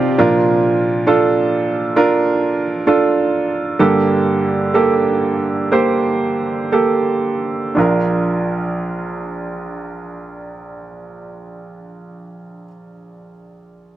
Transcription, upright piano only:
0.00 0.14 C3 medium
0.00 0.19 C4 medium
0.00 0.19 F4 medium
0.00 0.20 G4 medium
0.00 0.14 D5 medium
0.00 0.20 F5 medium
0.00 0.19 G5 medium
0.00 0.20 A5 medium
0.18 3.75 A#2 medium
0.18 3.75 F3 medium
0.18 1.02 D4 medium
0.18 1.02 F4 medium
0.18 1.02 A#4 medium
1.07 1.91 D4 medium
1.07 1.91 F4 medium
1.07 1.91 A4 medium
1.96 2.82 D4 medium
1.96 2.82 F4 medium
1.96 2.82 A#4 medium
2.87 3.74 D4 medium
2.87 3.74 F4 medium
2.87 3.75 A4 medium
3.79 7.73 G2 soft
3.79 7.73 D3 medium
3.79 4.69 A#3 medium
3.79 4.69 G4 medium
3.79 4.69 A4 medium
4.74 5.66 A#3 medium
4.74 5.67 G4 medium
4.74 5.67 A4 medium
5.72 6.67 A#3 medium
5.72 6.67 G4 soft
5.72 6.67 C5 medium
6.72 7.71 A#3 soft
6.72 7.71 G4 soft
6.72 7.71 A4 medium
7.75 12.66 A#1 soft
7.75 12.64 D4 soft
7.75 12.66 F4 soft
7.75 12.68 A#4 medium

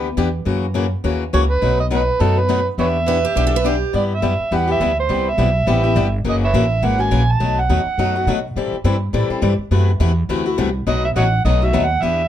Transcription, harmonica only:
1.34 1.41 C#5 medium
1.50 1.77 B4 medium
1.80 1.85 D#5 medium
1.93 2.23 B4 medium
2.21 2.39 A4 medium
2.38 2.66 B4 medium
2.80 2.88 B4 medium
2.80 2.87 C#5 medium
2.80 3.78 E5 medium
3.96 4.03 D5 medium
4.14 4.56 E5 medium
4.55 4.70 F#5 medium
4.72 4.97 E5 medium
5.00 5.30 C5 medium
5.29 6.14 E5 medium
6.29 6.36 D#5 loud
6.44 6.53 B4 medium
6.44 6.51 C#5 medium
6.44 6.87 E5 medium
6.85 7.03 F#5 loud
7.02 7.33 G#5 loud
7.31 7.61 A5 loud
7.60 8.45 F#5 medium
10.88 11.03 D#5 loud
11.05 11.10 E5 medium
11.17 11.24 C#5 medium
11.17 11.24 D#5 medium
11.17 11.43 F#5 loud
11.45 11.66 D#5 medium
11.65 11.85 E5 loud
11.84 12.04 F#5 loud
12.03 12.28 E5 medium

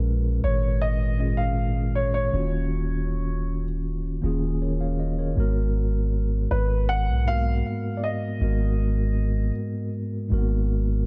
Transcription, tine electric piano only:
0.00 0.38 A#2 medium
0.00 0.38 G#3 medium
0.00 0.39 C#4 medium
0.00 0.39 F4 medium
0.00 0.40 A#4 medium
1.17 2.00 A#2 medium
1.17 2.01 G#3 medium
1.17 2.01 C#4 medium
1.17 2.02 F4 medium
1.22 2.02 G#4 medium
2.31 3.41 D#3 medium
2.31 3.42 A#3 medium
2.31 3.43 C#4 medium
2.31 3.43 F4 medium
2.36 3.44 F#4 medium
4.21 5.04 D#3 medium
4.21 5.04 A#3 medium
4.21 5.05 C#4 medium
4.21 5.06 F4 medium
4.26 5.06 G#4 medium
4.62 4.80 A#4 medium
4.62 4.80 C#5 medium
4.81 4.99 C#5 medium
4.81 4.99 F5 medium
5.00 5.18 D#5 medium
5.19 5.39 A#4 medium
5.19 5.55 C#5 medium
5.35 6.45 G#2 medium
5.35 6.46 G#3 medium
5.35 6.46 B3 medium
5.35 6.47 F#4 medium
5.40 6.48 A#4 loud
7.25 8.08 G#2 medium
7.25 8.08 G#3 medium
7.25 7.34 A#3 medium
7.25 8.10 F#4 medium
7.30 8.10 A#4 medium
7.34 8.12 B3 medium
8.39 9.49 G#2 medium
8.39 9.49 G#3 medium
8.39 9.50 B3 medium
8.39 9.51 F#4 medium
8.44 9.51 A#4 medium
10.29 11.06 G#2 medium
10.29 11.06 G#3 medium
10.29 10.38 A#3 medium
10.29 11.06 F#4 medium
10.34 11.06 A#4 medium
10.38 11.06 B3 medium

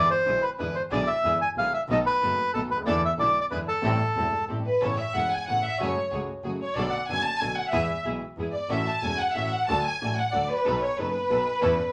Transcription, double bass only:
0.26 0.40 B1 medium
0.59 0.73 E2 medium
0.91 1.05 B1 medium
1.23 1.38 E2 medium
1.56 1.70 B1 medium
1.88 2.03 B1 medium
2.22 2.35 F#1 medium
2.54 2.68 B1 medium
2.71 2.86 D2 medium
2.86 3.00 E2 medium
3.19 3.32 B1 medium
3.51 3.65 E2 medium
3.83 3.96 A1 medium
4.16 4.29 E1 medium
4.49 4.62 A1 soft
4.81 4.95 A1 medium
5.15 5.28 E1 medium
5.47 5.60 A1 medium
5.79 5.93 F#1 medium
6.11 6.25 C#2 medium
6.44 6.57 F#1 medium
6.76 6.90 B1 medium
7.10 7.23 F#1 medium
7.41 7.55 B1 medium
7.73 7.87 E2 medium
8.06 8.19 B1 medium
8.37 8.51 E2 soft
8.69 8.84 A1 medium
9.03 9.17 E1 medium
9.35 9.50 A1 medium
9.69 9.82 D2 medium
10.01 10.15 A1 medium
10.34 10.48 D2 medium
10.67 10.80 B1 medium
10.99 11.12 F#1 medium
11.31 11.44 B1 medium
11.63 11.76 E2 medium

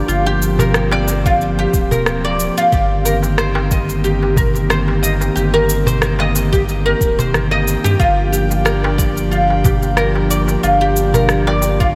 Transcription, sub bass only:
0.08 1.67 G1 loud
1.74 2.50 D1 loud
2.73 5.30 G1 loud
5.36 6.94 G1 loud
7.01 7.33 D1 loud
7.33 7.77 G1 medium
7.85 7.96 G2 medium
8.00 10.57 G1 loud
10.64 11.95 G1 loud

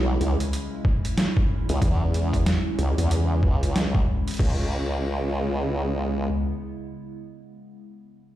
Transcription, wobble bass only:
0.00 0.18 B1 medium
0.21 0.37 C#2 medium
1.69 1.80 C#2 medium
1.82 2.44 E2 medium
2.79 2.95 C#2 medium
2.98 3.41 E2 medium
3.43 4.05 C#2 loud
4.39 6.29 C#2 medium

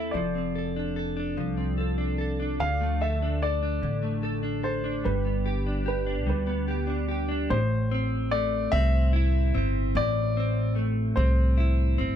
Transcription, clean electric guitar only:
0.00 0.14 A3 medium
0.00 0.35 C4 soft
0.00 0.23 E4 soft
0.00 0.55 A4 soft
0.14 1.37 F3 medium
0.35 1.56 C4 soft
0.55 0.96 A4 soft
0.76 1.16 D4 soft
0.96 1.77 A4 soft
1.17 1.98 D4 soft
1.37 4.87 F3 medium
1.58 2.68 C4 soft
1.78 2.18 A4 soft
1.98 2.39 D4 soft
2.18 3.01 A4 soft
2.40 3.22 D4 soft
2.60 3.82 D3 medium
2.81 4.02 A3 soft
3.01 3.41 A4 medium
3.22 3.62 D4 soft
3.42 4.22 A4 medium
3.63 4.43 D4 soft
3.82 7.32 D3 medium
4.03 5.13 A3 soft
4.23 4.62 A4 medium
4.43 4.84 D4 soft
4.63 5.13 A4 soft
4.84 5.66 D4 soft
5.04 6.25 G3 medium
5.25 6.46 B3 soft
5.46 5.85 G4 medium
5.67 6.05 D4 soft
5.86 6.67 G4 medium
6.07 6.86 D4 soft
6.27 7.58 G3 medium
6.47 7.58 B3 soft
6.68 7.07 G4 soft
6.87 7.27 D4 soft
7.08 7.58 G4 soft
7.29 7.58 D4 soft
7.50 9.95 A2 medium
7.91 8.72 C4 medium
8.31 10.76 A3 medium
8.73 9.54 C4 medium
9.13 11.56 E4 medium
9.55 10.37 C4 medium
9.96 12.16 A2 medium
10.37 11.16 C4 medium
10.76 12.16 A3 medium
11.17 11.98 C4 medium
11.58 12.16 E4 medium
11.98 12.16 C4 medium

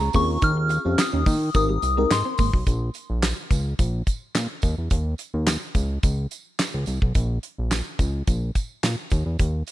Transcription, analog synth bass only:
0.14 0.38 D#2 loud
0.42 0.79 D#2 loud
0.85 0.96 F2 loud
1.13 1.24 D#2 loud
1.26 1.50 D#3 loud
1.55 1.78 G#1 loud
1.83 2.06 C2 medium
2.11 2.23 G#2 medium
2.39 2.51 G#1 loud
2.54 2.65 B1 medium
2.67 2.90 A#1 loud
3.10 3.33 A#1 loud
3.51 3.74 C#2 medium
3.79 4.03 A#1 loud
4.35 4.47 A#2 medium
4.63 4.75 D#2 loud
4.78 4.89 E2 medium
4.91 5.15 D#2 loud
5.34 5.58 D#2 loud
5.75 5.99 C#2 loud
6.03 6.27 C#2 medium
6.74 6.85 C#2 medium
6.87 7.00 C2 medium
7.02 7.13 B1 medium
7.15 7.39 A#1 loud
7.58 7.82 A#1 medium
7.99 8.23 C#2 loud
8.28 8.51 A#1 loud
8.83 8.96 A#2 loud
9.12 9.24 D#2 loud
9.26 9.37 E2 medium
9.39 9.63 D#2 loud

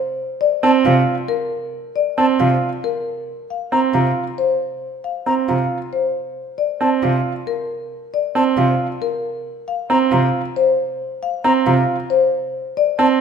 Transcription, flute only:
0.63 0.71 A5 medium
2.18 2.26 A5 medium
3.72 3.80 A#5 medium
5.26 5.35 A#5 medium
6.81 6.89 A5 medium
8.36 8.44 A5 medium
9.90 9.98 A#5 medium
11.44 11.53 A#5 medium
12.99 13.07 A5 medium

